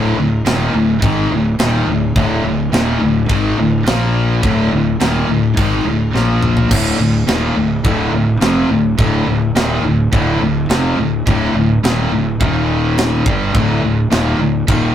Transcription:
Already playing: fingered electric bass D1, distorted electric guitar D2 A2 D3
0.18 fingered electric bass D1, distorted electric guitar D2 A2
0.46 fingered electric bass D#1, distorted electric guitar D#2 A#2 D#3, snare, crash
0.74 fingered electric bass D1, distorted electric guitar D2 A2
1.02 fingered electric bass G#1, distorted electric guitar G#2 D#3 G#3, kick, crash
1.30 fingered electric bass D1, distorted electric guitar D2 A2
1.59 fingered electric bass D#1, distorted electric guitar D#2 A#2 D#3, snare, crash
1.87 fingered electric bass D1, distorted electric guitar D2 A2
2.16 fingered electric bass D1, distorted electric guitar D2 A2 D3, kick, crash
2.44 fingered electric bass D1, distorted electric guitar D2 A2
2.72 fingered electric bass D#1, distorted electric guitar D#2 A#2 D#3, snare, crash
3.01 fingered electric bass D1, distorted electric guitar D2 A2
3.29 fingered electric bass G#1, distorted electric guitar G#2 D#3 G#3, kick, crash
3.58 fingered electric bass D1, distorted electric guitar D2 A2
3.86 fingered electric bass A#1, distorted electric guitar A#2 F3 A#3, snare, crash
4.43 fingered electric bass D1, distorted electric guitar D2 A2 D3, kick, crash
4.72 fingered electric bass D1, distorted electric guitar D2 A2
5.00 fingered electric bass D#1, distorted electric guitar D#2 A#2 D#3, snare, crash
5.29 fingered electric bass D1, distorted electric guitar D2 A2
5.57 fingered electric bass G#1, distorted electric guitar G#2 D#3 G#3, kick, crash
5.85 fingered electric bass D1, distorted electric guitar D2 A2
6.13 fingered electric bass A#1, distorted electric guitar A#2 F3 A#3, snare
6.42 mid tom
6.57 floor tom
6.70 fingered electric bass D1, distorted electric guitar D2 A2 D3, kick, crash, china
6.98 fingered electric bass D1, distorted electric guitar D2 A2
7.27 fingered electric bass D#1, distorted electric guitar D#2 A#2 D#3, snare, china
7.56 fingered electric bass D1, distorted electric guitar D2 A2
7.84 fingered electric bass D1, distorted electric guitar D2 A2 D3, kick, china
8.12 fingered electric bass D1, distorted electric guitar D2 A2
8.40 fingered electric bass F1, distorted electric guitar F2 C3 F3, snare, china
8.69 fingered electric bass D1, distorted electric guitar D2 A2
8.98 fingered electric bass D1, distorted electric guitar D2 A2 D3, kick, china
9.26 fingered electric bass D1, distorted electric guitar D2 A2
9.55 fingered electric bass D#1, distorted electric guitar D#2 A#2 D#3, snare, china
9.83 fingered electric bass D1, distorted electric guitar D2 A2
10.12 fingered electric bass D1, distorted electric guitar D2 A2 D3, kick, china
10.41 fingered electric bass D1, distorted electric guitar D2 A2
10.69 fingered electric bass F1, distorted electric guitar F2 C3 F3, snare, china
10.98 fingered electric bass D1, distorted electric guitar D2 A2
11.27 fingered electric bass D1, distorted electric guitar D2 A2 D3, kick, china
11.54 fingered electric bass D1, distorted electric guitar D2 A2
11.83 fingered electric bass D#1, distorted electric guitar D#2 A#2 D#3, snare, china
12.12 fingered electric bass D1, distorted electric guitar D2 A2
12.40 fingered electric bass D#1, distorted electric guitar D#2 A#2 D#3, kick, china
12.98 snare, china
13.26 fingered electric bass G1, distorted electric guitar G2 D3 G3, kick
13.53 fingered electric bass D1, distorted electric guitar D2 A2 D3, kick, china
13.83 fingered electric bass D1, distorted electric guitar D2 A2
14.10 fingered electric bass D#1, distorted electric guitar D#2 A#2 D#3, snare, china
14.39 fingered electric bass D1, distorted electric guitar D2 A2
14.68 fingered electric bass D#1, distorted electric guitar D#2 A#2 D#3, kick, china

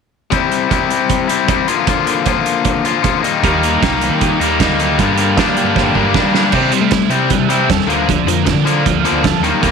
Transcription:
0.31 overdriven electric guitar C3 G3 C4 E4, kick, closed hi-hat
0.52 closed hi-hat
0.70 overdriven electric guitar C3 G3 C4 E4, kick, closed hi-hat
0.91 closed hi-hat
1.10 kick, closed hi-hat
1.28 overdriven electric guitar G3 C4 E4, closed hi-hat
1.48 overdriven electric guitar C3 G3 C4 E4, kick, closed hi-hat
1.68 overdriven electric guitar D3 F3 A#3 F4, closed hi-hat
1.86 overdriven electric guitar D3 F3 A#3 F4, kick, closed hi-hat
2.07 closed hi-hat
2.25 overdriven electric guitar D3 F3 A#3 F4, kick, closed hi-hat
2.46 closed hi-hat
2.65 kick, closed hi-hat
2.85 overdriven electric guitar F3 A#3 F4, closed hi-hat
3.02 overdriven electric guitar D3 F3 A#3 F4, kick, closed hi-hat
3.22 overdriven electric guitar D#3 G3 A#3 D#4, closed hi-hat
3.42 fingered electric bass D#2, overdriven electric guitar D#3 G3 A#3 D#4, kick, closed hi-hat
3.63 overdriven electric guitar A#3, closed hi-hat
3.81 fingered electric bass C2, overdriven electric guitar D#3 G3 A#3 D#4, kick, snare, closed hi-hat
4.01 overdriven electric guitar G4, closed hi-hat
4.09 fingered electric bass D#3
4.21 overdriven electric guitar D#4, kick, closed hi-hat
4.40 fingered electric bass D#2, overdriven electric guitar G3 A#3 D#4, closed hi-hat
4.59 overdriven electric guitar D#3 G3 A#3 D#4, kick, snare, closed hi-hat
4.69 fingered electric bass D2
4.79 overdriven electric guitar G3 A#3 D#4 G4, closed hi-hat
4.98 fingered electric bass G2, overdriven electric guitar G2 D3 G3 A#3 D4, kick, closed hi-hat
5.18 overdriven electric guitar A#3, closed hi-hat
5.37 overdriven electric guitar D3 G3 A#3 D4, fingered electric bass G3, kick, snare, closed hi-hat
5.57 overdriven electric guitar G4, closed hi-hat
5.64 fingered electric bass G2
5.76 overdriven electric guitar D4, kick, snare
5.95 fingered electric bass G2, overdriven electric guitar G3 A#3 D4, kick
6.14 overdriven electric guitar G2 D3 G3 A#3 D4, kick, snare
6.23 fingered electric bass G3
6.32 overdriven electric guitar G3 A#3 D4 G4, snare
6.52 fingered electric bass C3, overdriven electric guitar C3 G3 C4, kick, crash
6.72 overdriven electric guitar C3 G3, closed hi-hat
6.81 fingered electric bass A3
6.91 overdriven electric guitar C3 G3 E4, kick, snare, closed hi-hat
7.09 fingered electric bass C3, overdriven electric guitar C3 G3 C4, closed hi-hat
7.29 overdriven electric guitar C3 E3 G3, kick, closed hi-hat
7.39 fingered electric bass C3
7.49 overdriven electric guitar C3 G3 C4 E4, closed hi-hat
7.68 fingered electric bass E2, overdriven electric guitar C3 G3 A4, kick, snare, closed hi-hat
7.81 snare
7.86 fingered electric bass D2, overdriven electric guitar D3 F3 A#3, closed hi-hat
8.08 overdriven electric guitar D3 F3, kick, closed hi-hat
8.25 fingered electric bass F2, overdriven electric guitar D3 F3 A#3, closed hi-hat
8.45 overdriven electric guitar D3 F3 D4, kick, snare, closed hi-hat
8.54 fingered electric bass D3
8.65 overdriven electric guitar D3 F3 A#3, closed hi-hat
8.85 fingered electric bass D2, overdriven electric guitar D3 F3, kick, closed hi-hat
9.04 overdriven electric guitar D3 F3 A#3 D4, closed hi-hat
9.11 fingered electric bass D2
9.23 overdriven electric guitar D3 F3 A4, kick, snare, closed hi-hat
9.40 fingered electric bass D#2, overdriven electric guitar D#3 G3
9.44 overdriven electric guitar A#3, closed hi-hat
9.61 fingered electric bass D#2, overdriven electric guitar D#3 G3 A#3, kick, closed hi-hat

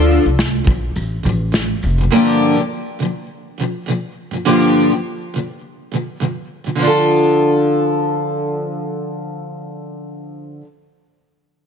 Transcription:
Already playing: upright bass D2, steel-string acoustic guitar D3 F3 D4 F4 A4
0.10 shaker
0.23 upright bass C2, steel-string acoustic guitar D3 F3
0.39 snare, shaker
0.64 upright bass A#1, steel-string acoustic guitar D3 F3, kick
0.68 shaker
0.96 upright bass A1, shaker
1.23 upright bass A1, steel-string acoustic guitar D3 F3, shaker
1.52 steel-string acoustic guitar D3 F3, snare, shaker
1.82 upright bass F1, shaker
1.98 steel-string acoustic guitar D3 F3
2.10 steel-string acoustic guitar G2 D3 F3 A#3 D4 G4
2.56 steel-string acoustic guitar G2 D3 F3
2.99 steel-string acoustic guitar G2 D3 F3
3.58 steel-string acoustic guitar G2 D3 F3
3.86 steel-string acoustic guitar G2 D3 F3
4.31 steel-string acoustic guitar G2 D3 F3
4.45 steel-string acoustic guitar G2 D3 F3 A#3 D4 G4
4.92 steel-string acoustic guitar G2 D3 F3
5.34 steel-string acoustic guitar G2 D3 F3
5.91 steel-string acoustic guitar G2 D3 F3
6.20 steel-string acoustic guitar G2 D3 F3
6.64 steel-string acoustic guitar G2 D3 F3
6.75 steel-string acoustic guitar D3 F3
6.82 steel-string acoustic guitar D4 F4
6.87 steel-string acoustic guitar A4

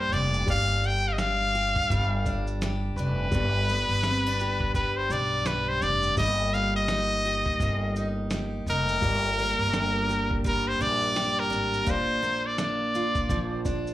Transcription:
Already playing: steel-string acoustic guitar G2 G3 A#3 D4 G4, upright piano A#3 G4
0.00 trumpet C5
0.12 upright bass F1, steel-string acoustic guitar D4, trumpet D5, shaker
0.34 shaker
0.45 upright bass G1, steel-string acoustic guitar G2, upright piano G3 G4 D5, kick, shaker
0.51 trumpet F5
0.83 trumpet G5, shaker
1.08 trumpet F5
1.13 trumpet D#5
1.18 steel-string acoustic guitar D4, trumpet F5, snare, shaker
1.55 steel-string acoustic guitar G4, shaker
1.75 kick, shaker
1.90 upright bass G1, steel-string acoustic guitar G3, kick, shaker
2.26 steel-string acoustic guitar D4, kick, shaker
2.47 shaker
2.62 steel-string acoustic guitar G4, snare, shaker
2.96 upright bass F1, steel-string acoustic guitar D4, trumpet B4, shaker
3.30 upright bass G1, upright piano B3 G4 D5, kick, shaker
3.35 steel-string acoustic guitar G2
3.69 steel-string acoustic guitar B3, shaker
3.89 upright bass G1
4.03 steel-string acoustic guitar C4, snare, shaker
4.26 steel-string acoustic guitar D4
4.40 steel-string acoustic guitar G4, shaker
4.60 kick
4.75 steel-string acoustic guitar G3, trumpet B4, kick, shaker
4.97 trumpet C5
5.10 upright bass B1, steel-string acoustic guitar D4, trumpet D5, shaker
5.45 steel-string acoustic guitar G4, trumpet B4, snare, shaker
5.69 trumpet C5
5.82 upright bass F1, steel-string acoustic guitar D4, trumpet D5, shaker
6.03 shaker
6.16 upright bass G1, steel-string acoustic guitar G3, upright piano A#3 G4, trumpet D#5, kick, shaker
6.20 upright piano D#5
6.54 steel-string acoustic guitar A#3, trumpet F5, shaker
6.76 trumpet D#5
6.88 steel-string acoustic guitar D#4, snare, shaker
7.25 steel-string acoustic guitar G4, shaker
7.46 kick
7.60 upright bass G1, steel-string acoustic guitar A#3, kick, shaker
7.96 steel-string acoustic guitar D#4, shaker
8.30 steel-string acoustic guitar G4, snare, shaker
8.66 upright bass F1, steel-string acoustic guitar D#4, trumpet A#4, shaker
8.88 shaker
9.00 upright bass G1, upright piano A#3 G4 D5, kick, shaker
9.04 steel-string acoustic guitar G2
9.38 steel-string acoustic guitar A#3, shaker
9.59 upright bass G1
9.73 steel-string acoustic guitar D4, snare, shaker
10.09 steel-string acoustic guitar G4, shaker
10.31 kick
10.44 steel-string acoustic guitar G3, trumpet A#4, kick, shaker
10.68 trumpet C5
10.79 upright bass A#1, steel-string acoustic guitar D4, trumpet D5, shaker
11.16 steel-string acoustic guitar G4, snare, shaker
11.40 trumpet A#4
11.50 upright bass G#1, steel-string acoustic guitar D4, shaker
11.74 shaker
11.85 upright bass A#1, steel-string acoustic guitar A#2, upright piano A#3 F4, kick, shaker
11.89 trumpet C5, upright piano D5
12.23 steel-string acoustic guitar A#3, shaker
12.46 trumpet D5
12.58 steel-string acoustic guitar D4, trumpet D5, snare, shaker
12.95 steel-string acoustic guitar F4, shaker
13.15 kick, shaker
13.29 upright bass A#1, steel-string acoustic guitar F3, kick, shaker
13.65 steel-string acoustic guitar D4, upright piano D5, kick, shaker
13.87 shaker

